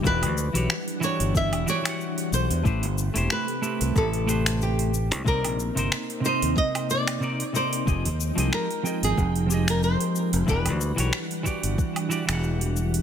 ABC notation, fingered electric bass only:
X:1
M:4/4
L:1/16
Q:"Swing 16ths" 1/4=92
K:Em
V:1 name="Fingered electric bass" clef=bass
E,,, D,,2 B,,, z3 G,,,2 E,,, z4 B,,, E,, | A,,, G,,,2 E,,, z3 C,, A,,,6- A,,, C,, | C,, _B,,,2 G,,, z3 _E,, z8 | =F,,, _E,,2 C,, z3 _A,,, F,,,4- F,,, z2 F,,, |
E,,, D,,2 B,,, z3 G,,, z3 E,,,4- E,,, |]